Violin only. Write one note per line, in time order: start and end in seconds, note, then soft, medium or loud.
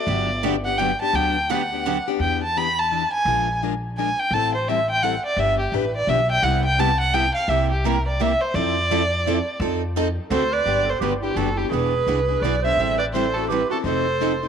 0.00 0.44 D5 loud
0.65 0.80 F#5 medium
0.78 1.00 G5 medium
1.01 1.16 A5 loud
1.15 1.52 G5 medium
1.51 2.07 F#5 medium
2.21 2.41 G5 medium
2.44 2.59 A5 medium
2.58 2.81 B5 loud
2.79 3.13 A5 medium
3.13 3.58 G#5 loud
3.98 4.21 G#5 medium
4.19 4.35 G5 loud
4.34 4.54 A5 loud
4.55 4.70 C5 medium
4.68 4.89 E5 medium
4.90 5.05 G5 loud
5.03 5.25 F#5 medium
5.25 5.40 D5 medium
5.39 5.59 E5 loud
5.59 5.76 G4 medium
5.75 5.96 B4 medium
5.96 6.11 D5 medium
6.09 6.30 E5 medium
6.31 6.45 G5 loud
6.43 6.65 F#5 medium
6.65 6.81 G5 loud
6.79 7.00 A5 loud
7.00 7.15 F#5 loud
7.14 7.34 G5 loud
7.34 7.50 F5 loud
7.49 7.70 E5 medium
7.71 7.87 G4 medium
7.85 8.06 A#4 medium
8.08 8.23 D5 medium
8.21 8.43 E5 medium
8.41 8.56 C5 medium
8.55 9.60 D5 loud
10.32 10.55 C5 medium
10.54 10.91 D5 loud
10.89 11.02 C5 medium
11.02 11.12 B4 medium
11.23 11.38 G4 medium
11.37 11.59 A4 medium
11.58 11.71 G4 medium
11.71 12.44 B4 medium
12.42 12.63 D5 medium
12.64 12.97 E5 medium
12.99 13.05 D5 medium
13.13 13.36 C5 medium
13.34 13.49 A4 medium
13.49 13.69 B4 medium
13.71 13.77 A4 medium
13.85 14.48 C5 medium